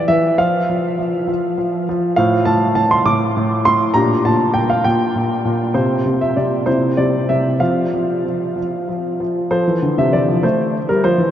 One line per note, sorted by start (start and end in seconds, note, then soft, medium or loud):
0.00 0.34 G4 soft
0.00 0.34 C5 soft
0.08 0.38 E3 medium
0.08 0.39 E5 medium
0.38 0.68 F3 soft
0.38 2.13 F4 soft
0.38 2.13 C5 soft
0.38 1.87 F5 medium
0.69 0.97 F3 soft
0.99 1.26 F3 soft
1.28 1.56 F3 soft
1.58 1.87 F3 soft
1.89 2.17 F3 medium
2.16 2.45 A2 medium
2.16 3.91 F4 soft
2.16 3.91 C5 soft
2.16 2.47 F5 medium
2.45 2.74 A2 soft
2.45 2.74 A5 medium
2.75 3.04 A2 soft
2.75 2.91 A5 medium
2.91 3.06 C6 medium
3.05 3.35 A2 soft
3.05 3.65 D6 medium
3.37 3.65 A2 soft
3.65 3.95 A2 medium
3.65 3.95 C6 medium
3.94 4.24 A#2 medium
3.94 5.71 D4 soft
3.94 5.71 G4 soft
3.94 4.24 A#5 medium
4.25 4.53 A#2 soft
4.25 4.55 A5 medium
4.54 4.84 A#2 soft
4.54 4.69 G5 medium
4.70 4.85 F5 medium
4.84 5.14 A#2 soft
4.84 5.76 G5 medium
5.16 5.44 A#2 soft
5.45 5.75 A#2 soft
5.74 6.04 C3 soft
5.74 6.62 C4 soft
5.74 6.62 F4 soft
5.74 6.21 C5 medium
6.06 6.35 C3 soft
6.21 6.36 E5 medium
6.36 6.65 C3 soft
6.36 6.67 D5 soft
6.66 6.97 C3 soft
6.66 7.57 C4 soft
6.66 7.57 E4 soft
6.66 6.97 C5 medium
6.97 7.28 C3 soft
6.97 7.29 D5 medium
7.29 7.60 C3 soft
7.29 7.61 E5 medium
7.60 7.92 F3 soft
7.60 9.48 C4 soft
7.60 9.48 F4 soft
7.60 9.20 F5 medium
7.93 8.24 F3 soft
8.25 8.54 F3 soft
8.56 8.87 F3 soft
8.89 9.19 F3 soft
9.20 9.49 F3 soft
9.51 9.66 F3 medium
9.51 11.30 A4 soft
9.51 9.97 C5 medium
9.67 9.82 E3 soft
9.82 9.97 D3 soft
9.98 10.12 C3 soft
9.98 10.13 E5 medium
10.13 10.28 E3 soft
10.13 10.43 D5 medium
10.28 10.43 F3 medium
10.43 10.76 A3 soft
10.43 10.89 C5 medium
10.89 11.03 G3 soft
10.89 11.04 A#4 medium
11.04 11.18 F3 medium
11.04 11.31 C5 medium
11.18 11.31 E3 medium